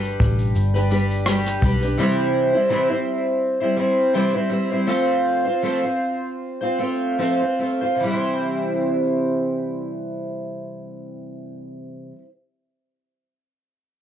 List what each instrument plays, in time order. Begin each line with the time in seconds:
Already playing: picked electric bass G1, steel-string acoustic guitar G3 D4 G4 B4
0.05 shaker
0.20 picked electric bass A1, kick
0.39 shaker
0.56 picked electric bass G1, shaker
0.74 steel-string acoustic guitar D4 G4 B4, shaker
0.90 steel-string acoustic guitar G3 D4 G4 B4, shaker
1.11 shaker
1.26 steel-string acoustic guitar G3 D4 G4 B4, cross-stick, shaker
1.46 cross-stick, shaker
1.61 picked electric bass B1, steel-string acoustic guitar G3 D4 G4 B4, kick, shaker
1.81 steel-string acoustic guitar D4 G4 B4, shaker
1.97 steel-string acoustic guitar C3 E3 G3 C4 E4 C5
2.53 steel-string acoustic guitar G3 C4 E4 C5
2.69 steel-string acoustic guitar C3 E3 G3 C4 E4 C5
2.89 steel-string acoustic guitar G3 C4 E4 C5
3.60 steel-string acoustic guitar G3 C4 E4 C5
3.76 steel-string acoustic guitar G3 C4 E4 C5
4.13 steel-string acoustic guitar C3 E3 G3 C4 E4 C5
4.33 steel-string acoustic guitar G3 C4 E4 C5
4.49 steel-string acoustic guitar G3 C4 E4 C5
4.70 steel-string acoustic guitar G3 C4 E4 C5
4.87 steel-string acoustic guitar F3 A3 C4 F4 C5
5.45 steel-string acoustic guitar C4 F4 C5
5.62 steel-string acoustic guitar F3 A3 C4 F4 C5
5.83 steel-string acoustic guitar C4 F4 C5
6.61 steel-string acoustic guitar C4 F4 C5
6.78 steel-string acoustic guitar A3 C4 F4 C5
7.19 steel-string acoustic guitar F3 A3 C4 F4 C5
7.40 steel-string acoustic guitar C4 F4 C5
7.59 steel-string acoustic guitar A3 C4 F4 C5
7.81 steel-string acoustic guitar C4 F4 C5
7.95 steel-string acoustic guitar C3
8.00 steel-string acoustic guitar E3 G3
8.07 steel-string acoustic guitar C4 E4
8.14 steel-string acoustic guitar C5